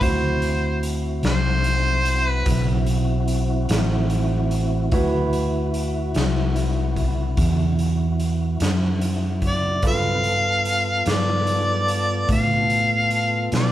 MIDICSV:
0, 0, Header, 1, 6, 480
1, 0, Start_track
1, 0, Tempo, 818554
1, 10, Time_signature, 12, 3, 24, 8
1, 8045, End_track
2, 0, Start_track
2, 0, Title_t, "Harmonica"
2, 0, Program_c, 0, 22
2, 18, Note_on_c, 0, 72, 63
2, 493, Note_off_c, 0, 72, 0
2, 739, Note_on_c, 0, 72, 94
2, 1337, Note_off_c, 0, 72, 0
2, 1337, Note_on_c, 0, 71, 94
2, 1670, Note_off_c, 0, 71, 0
2, 5549, Note_on_c, 0, 74, 76
2, 5762, Note_off_c, 0, 74, 0
2, 5789, Note_on_c, 0, 77, 84
2, 6508, Note_on_c, 0, 74, 85
2, 6517, Note_off_c, 0, 77, 0
2, 7217, Note_off_c, 0, 74, 0
2, 7225, Note_on_c, 0, 77, 77
2, 7912, Note_off_c, 0, 77, 0
2, 7950, Note_on_c, 0, 74, 80
2, 8045, Note_off_c, 0, 74, 0
2, 8045, End_track
3, 0, Start_track
3, 0, Title_t, "Grand piano"
3, 0, Program_c, 1, 0
3, 2, Note_on_c, 1, 64, 41
3, 9, Note_on_c, 1, 66, 41
3, 15, Note_on_c, 1, 72, 49
3, 2860, Note_off_c, 1, 64, 0
3, 2863, Note_off_c, 1, 66, 0
3, 2866, Note_off_c, 1, 72, 0
3, 2886, Note_on_c, 1, 64, 57
3, 2892, Note_on_c, 1, 66, 50
3, 2896, Note_on_c, 1, 71, 64
3, 5742, Note_off_c, 1, 64, 0
3, 5745, Note_off_c, 1, 66, 0
3, 5747, Note_off_c, 1, 71, 0
3, 5766, Note_on_c, 1, 65, 45
3, 5769, Note_on_c, 1, 69, 44
3, 5775, Note_on_c, 1, 71, 47
3, 8045, Note_off_c, 1, 65, 0
3, 8045, Note_off_c, 1, 69, 0
3, 8045, Note_off_c, 1, 71, 0
3, 8045, End_track
4, 0, Start_track
4, 0, Title_t, "Tonewheel organ"
4, 0, Program_c, 2, 16
4, 11, Note_on_c, 2, 66, 49
4, 13, Note_on_c, 2, 64, 54
4, 15, Note_on_c, 2, 60, 54
4, 2865, Note_off_c, 2, 66, 0
4, 2866, Note_off_c, 2, 64, 0
4, 2867, Note_off_c, 2, 60, 0
4, 2884, Note_on_c, 2, 64, 59
4, 2887, Note_on_c, 2, 66, 56
4, 5741, Note_off_c, 2, 64, 0
4, 5743, Note_off_c, 2, 66, 0
4, 5759, Note_on_c, 2, 60, 51
4, 5762, Note_on_c, 2, 54, 52
4, 5764, Note_on_c, 2, 71, 50
4, 6002, Note_off_c, 2, 60, 0
4, 6002, Note_on_c, 2, 69, 52
4, 6004, Note_off_c, 2, 54, 0
4, 6005, Note_off_c, 2, 71, 0
4, 6005, Note_on_c, 2, 59, 49
4, 6005, Note_on_c, 2, 65, 58
4, 8045, Note_off_c, 2, 59, 0
4, 8045, Note_off_c, 2, 65, 0
4, 8045, Note_off_c, 2, 69, 0
4, 8045, End_track
5, 0, Start_track
5, 0, Title_t, "Fingered electric bass"
5, 0, Program_c, 3, 33
5, 4, Note_on_c, 3, 38, 66
5, 705, Note_off_c, 3, 38, 0
5, 720, Note_on_c, 3, 36, 79
5, 1422, Note_off_c, 3, 36, 0
5, 1443, Note_on_c, 3, 35, 74
5, 2144, Note_off_c, 3, 35, 0
5, 2167, Note_on_c, 3, 33, 80
5, 2865, Note_off_c, 3, 33, 0
5, 2888, Note_on_c, 3, 38, 67
5, 3586, Note_off_c, 3, 38, 0
5, 3608, Note_on_c, 3, 36, 77
5, 4306, Note_off_c, 3, 36, 0
5, 4328, Note_on_c, 3, 40, 75
5, 5026, Note_off_c, 3, 40, 0
5, 5047, Note_on_c, 3, 42, 69
5, 5745, Note_off_c, 3, 42, 0
5, 5763, Note_on_c, 3, 43, 61
5, 6463, Note_off_c, 3, 43, 0
5, 6488, Note_on_c, 3, 43, 65
5, 7186, Note_off_c, 3, 43, 0
5, 7208, Note_on_c, 3, 45, 74
5, 7906, Note_off_c, 3, 45, 0
5, 7931, Note_on_c, 3, 47, 76
5, 8045, Note_off_c, 3, 47, 0
5, 8045, End_track
6, 0, Start_track
6, 0, Title_t, "Drums"
6, 6, Note_on_c, 9, 36, 86
6, 7, Note_on_c, 9, 42, 65
6, 65, Note_off_c, 9, 36, 0
6, 66, Note_off_c, 9, 42, 0
6, 246, Note_on_c, 9, 42, 47
6, 304, Note_off_c, 9, 42, 0
6, 486, Note_on_c, 9, 42, 51
6, 545, Note_off_c, 9, 42, 0
6, 722, Note_on_c, 9, 42, 57
6, 732, Note_on_c, 9, 38, 86
6, 780, Note_off_c, 9, 42, 0
6, 791, Note_off_c, 9, 38, 0
6, 962, Note_on_c, 9, 42, 51
6, 1021, Note_off_c, 9, 42, 0
6, 1203, Note_on_c, 9, 42, 56
6, 1262, Note_off_c, 9, 42, 0
6, 1441, Note_on_c, 9, 42, 74
6, 1444, Note_on_c, 9, 36, 103
6, 1452, Note_on_c, 9, 38, 25
6, 1500, Note_off_c, 9, 42, 0
6, 1503, Note_off_c, 9, 36, 0
6, 1510, Note_off_c, 9, 38, 0
6, 1680, Note_on_c, 9, 42, 55
6, 1738, Note_off_c, 9, 42, 0
6, 1921, Note_on_c, 9, 42, 49
6, 1980, Note_off_c, 9, 42, 0
6, 2163, Note_on_c, 9, 42, 76
6, 2174, Note_on_c, 9, 38, 88
6, 2222, Note_off_c, 9, 42, 0
6, 2233, Note_off_c, 9, 38, 0
6, 2403, Note_on_c, 9, 42, 52
6, 2462, Note_off_c, 9, 42, 0
6, 2644, Note_on_c, 9, 42, 44
6, 2703, Note_off_c, 9, 42, 0
6, 2882, Note_on_c, 9, 42, 60
6, 2885, Note_on_c, 9, 36, 90
6, 2941, Note_off_c, 9, 42, 0
6, 2944, Note_off_c, 9, 36, 0
6, 3124, Note_on_c, 9, 42, 48
6, 3183, Note_off_c, 9, 42, 0
6, 3365, Note_on_c, 9, 42, 52
6, 3424, Note_off_c, 9, 42, 0
6, 3603, Note_on_c, 9, 42, 54
6, 3614, Note_on_c, 9, 38, 84
6, 3662, Note_off_c, 9, 42, 0
6, 3673, Note_off_c, 9, 38, 0
6, 3846, Note_on_c, 9, 42, 47
6, 3904, Note_off_c, 9, 42, 0
6, 4084, Note_on_c, 9, 36, 61
6, 4085, Note_on_c, 9, 42, 50
6, 4143, Note_off_c, 9, 36, 0
6, 4144, Note_off_c, 9, 42, 0
6, 4323, Note_on_c, 9, 42, 70
6, 4324, Note_on_c, 9, 36, 98
6, 4382, Note_off_c, 9, 42, 0
6, 4383, Note_off_c, 9, 36, 0
6, 4566, Note_on_c, 9, 42, 50
6, 4625, Note_off_c, 9, 42, 0
6, 4806, Note_on_c, 9, 42, 47
6, 4865, Note_off_c, 9, 42, 0
6, 5044, Note_on_c, 9, 42, 69
6, 5054, Note_on_c, 9, 38, 85
6, 5103, Note_off_c, 9, 42, 0
6, 5113, Note_off_c, 9, 38, 0
6, 5286, Note_on_c, 9, 42, 54
6, 5344, Note_off_c, 9, 42, 0
6, 5523, Note_on_c, 9, 42, 53
6, 5524, Note_on_c, 9, 36, 59
6, 5582, Note_off_c, 9, 42, 0
6, 5583, Note_off_c, 9, 36, 0
6, 5761, Note_on_c, 9, 42, 69
6, 5764, Note_on_c, 9, 36, 90
6, 5820, Note_off_c, 9, 42, 0
6, 5823, Note_off_c, 9, 36, 0
6, 6003, Note_on_c, 9, 42, 52
6, 6061, Note_off_c, 9, 42, 0
6, 6247, Note_on_c, 9, 42, 56
6, 6305, Note_off_c, 9, 42, 0
6, 6484, Note_on_c, 9, 42, 67
6, 6495, Note_on_c, 9, 38, 83
6, 6543, Note_off_c, 9, 42, 0
6, 6553, Note_off_c, 9, 38, 0
6, 6725, Note_on_c, 9, 42, 51
6, 6783, Note_off_c, 9, 42, 0
6, 6967, Note_on_c, 9, 42, 53
6, 7026, Note_off_c, 9, 42, 0
6, 7204, Note_on_c, 9, 42, 68
6, 7206, Note_on_c, 9, 36, 93
6, 7263, Note_off_c, 9, 42, 0
6, 7264, Note_off_c, 9, 36, 0
6, 7446, Note_on_c, 9, 42, 48
6, 7504, Note_off_c, 9, 42, 0
6, 7685, Note_on_c, 9, 42, 49
6, 7744, Note_off_c, 9, 42, 0
6, 7927, Note_on_c, 9, 42, 67
6, 7938, Note_on_c, 9, 38, 87
6, 7986, Note_off_c, 9, 42, 0
6, 7997, Note_off_c, 9, 38, 0
6, 8045, End_track
0, 0, End_of_file